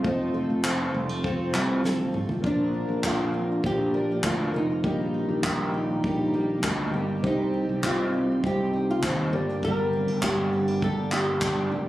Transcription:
Already playing: steel-string acoustic guitar A3
0.03 fretless electric bass F1, twelve-string acoustic guitar F3 C4 F4 A4, grand piano A3 F4, kick
0.07 grand piano D#5
0.34 steel-string acoustic guitar F3, twelve-string acoustic guitar C4 F4 A4
0.50 fretless electric bass F1
0.63 twelve-string acoustic guitar F3 C4 F4 A4, clap
0.94 fretless electric bass F1, steel-string acoustic guitar G3
1.09 steel-string acoustic guitar A3
1.23 twelve-string acoustic guitar F3 C4 F4 A4, kick
1.54 fretless electric bass C2, steel-string acoustic guitar C4, clap
1.83 twelve-string acoustic guitar F3 C4 F4 A4, snare
1.99 high tom
2.13 steel-string acoustic guitar A3, twelve-string acoustic guitar C4 F4 A4, mid tom
2.29 floor tom
2.42 fretless electric bass A#1, twelve-string acoustic guitar A#2 D3 F3 A#3 D4 A#4, grand piano A#3 F4, steel-string acoustic guitar F4, kick
2.46 nylon-string guitar D4, grand piano D5
2.74 steel-string acoustic guitar D4
2.88 fretless electric bass A#1
3.03 twelve-string acoustic guitar A#2 D3 F3 A#3 D4 A#4, nylon-string guitar F4, kick, clap
3.34 steel-string acoustic guitar C4
3.63 fretless electric bass A#1, twelve-string acoustic guitar F3 A#3 D4 A#4, steel-string acoustic guitar F4, nylon-string guitar G4, kick
3.93 twelve-string acoustic guitar F3 A#3 D4 A#4
4.24 fretless electric bass D2, twelve-string acoustic guitar A#2 D3 F3 A#3 D4 A#4, steel-string acoustic guitar F4, nylon-string guitar F4, kick, clap
4.53 fretless electric bass F1, twelve-string acoustic guitar F3 A#3 A#4, nylon-string guitar D#4
4.82 fretless electric bass A#1, twelve-string acoustic guitar A#2 D#3 G3 A#3 D#4 G4, grand piano A#3 G4 D#5, kick
5.14 steel-string acoustic guitar D#4
5.29 fretless electric bass A#1
5.43 twelve-string acoustic guitar A#2 D#3 G3 A#3 D#4 G4, kick, clap
5.74 steel-string acoustic guitar D#4
6.03 fretless electric bass A#1, twelve-string acoustic guitar G3 A#3 D#4 G4, kick
6.33 twelve-string acoustic guitar G3 A#3 D#4 G4
6.63 fretless electric bass D2, twelve-string acoustic guitar A#2 G3 A#3 D#4 G4, kick, clap
6.93 fretless electric bass G1, twelve-string acoustic guitar G3 A#3 D#4 G4
7.22 fretless electric bass C2, twelve-string acoustic guitar C3 G3 C4 D#4 G4, grand piano C4 G4, kick
7.26 nylon-string guitar D#4, grand piano D#5
7.54 steel-string acoustic guitar D#4
7.69 fretless electric bass C2
7.83 twelve-string acoustic guitar C3 G3 C4 D#4 G4, nylon-string guitar F4, kick, clap
8.14 steel-string acoustic guitar D#4
8.43 fretless electric bass C2, twelve-string acoustic guitar G3 C4 D#4 G4, nylon-string guitar G4, kick
8.73 twelve-string acoustic guitar C4 D#4 G4
8.91 nylon-string guitar F4
9.03 fretless electric bass D#2, twelve-string acoustic guitar C3 G3 C4 D#4 G4, nylon-string guitar G4, kick, clap
9.32 fretless electric bass G1, twelve-string acoustic guitar G3 A#3 D4 G4, grand piano A#3 G4 D5
9.62 twelve-string acoustic guitar G2 D3 G3 A#3 D4 G4, nylon-string guitar A#4, kick
9.93 steel-string acoustic guitar C4
10.08 fretless electric bass G1, steel-string acoustic guitar D4
10.22 twelve-string acoustic guitar G2 D3 G3 A#3 D4 G4, nylon-string guitar G4, kick, clap
10.53 steel-string acoustic guitar C4
10.68 steel-string acoustic guitar D4
10.81 fretless electric bass G1, twelve-string acoustic guitar G3 A#3 D4 G4, nylon-string guitar A4, kick
11.11 twelve-string acoustic guitar G3 A#3 D4 G4, nylon-string guitar G4, clap
11.41 fretless electric bass G1, twelve-string acoustic guitar G2 D3 G3 A#3 D4 G4, kick, clap
11.71 fretless electric bass F1, twelve-string acoustic guitar G3 A#3 D4 G4

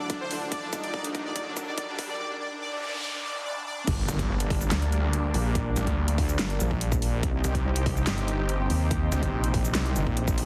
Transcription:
Already playing: analog synth pad D2 A2 F#3 D4, ambient pad D4 A4 F#5, riser
0.10 supersaw synth D4, kick, closed hi-hat
0.21 supersaw synth C5
0.31 supersaw synth D4, open hi-hat
0.42 supersaw synth D4
0.52 analog synth pad D#2 A#2 G3 D#4, ambient pad D#4, supersaw synth D5, kick, closed hi-hat
0.63 supersaw synth D4
0.70 supersaw synth D4, ambient pad A#4, kick, closed hi-hat, shaker
0.83 supersaw synth D5, closed hi-hat
0.94 supersaw synth D5, kick
1.04 supersaw synth D4, closed hi-hat
1.15 supersaw synth D4, kick, closed hi-hat
1.25 supersaw synth D5
1.35 supersaw synth D5, kick, closed hi-hat
1.46 supersaw synth D4
1.57 supersaw synth D4, kick, closed hi-hat, shaker
1.67 supersaw synth D5
1.78 supersaw synth D5, kick, closed hi-hat
1.88 supersaw synth D4
1.99 supersaw synth D4, kick, open hi-hat
2.09 supersaw synth D5
2.20 supersaw synth D5, noise sweep
2.30 supersaw synth D4
2.40 supersaw synth D5
2.51 supersaw synth D4
2.62 supersaw synth D5
2.72 supersaw synth D4
2.82 supersaw synth D5
2.93 supersaw synth D4
3.03 supersaw synth D5
3.14 supersaw synth D4
3.25 supersaw synth D5
3.35 supersaw synth D4
3.45 supersaw synth D5
3.56 supersaw synth D4
3.66 supersaw synth D5
3.77 supersaw synth D4
3.87 wobble bass G1, analog synth pad G3 A#3 D4, kick, closed hi-hat, crash, impact
4.08 detuned saw bass G1, closed hi-hat, shaker
4.19 kick, closed hi-hat
4.29 wobble bass G1
4.40 closed hi-hat
4.50 kick, open hi-hat
4.61 shaker
4.71 detuned saw bass D2, snare, clap, closed hi-hat
4.82 closed hi-hat
4.92 closed hi-hat
5.13 closed hi-hat
5.34 wobble bass A#1, open hi-hat
5.55 kick, closed hi-hat
5.76 detuned saw bass A1, closed hi-hat, shaker
5.87 detuned saw bass D2, kick, closed hi-hat
5.97 detuned saw bass D2
6.08 closed hi-hat
6.18 wobble bass D2, kick, open hi-hat
6.29 shaker
6.39 detuned saw bass G1, snare, clap, closed hi-hat
6.50 closed hi-hat
6.60 wobble bass A#1, closed hi-hat, shaker
6.71 kick
6.81 closed hi-hat
6.92 kick, shaker
7.02 open hi-hat
7.23 wobble bass C2, analog synth pad C3 C4 D#4 G4, kick, closed hi-hat
7.44 detuned saw bass C2, closed hi-hat, shaker
7.55 kick, closed hi-hat
7.65 wobble bass C2
7.76 closed hi-hat
7.86 kick, open hi-hat
7.97 shaker
8.07 detuned saw bass G1, snare, clap, closed hi-hat
8.18 closed hi-hat
8.28 closed hi-hat
8.49 closed hi-hat
8.70 wobble bass D#2, open hi-hat
8.91 kick, closed hi-hat
9.12 detuned saw bass D2, closed hi-hat, shaker
9.23 detuned saw bass G1, kick, closed hi-hat
9.33 detuned saw bass A#1
9.44 closed hi-hat
9.54 wobble bass A#1, kick, open hi-hat
9.65 shaker
9.75 detuned saw bass C2, snare, clap, closed hi-hat
9.86 closed hi-hat
9.96 wobble bass G1, closed hi-hat, shaker
10.07 wobble bass A#1, kick
10.17 closed hi-hat
10.28 wobble bass A#1, kick, shaker
10.38 open hi-hat

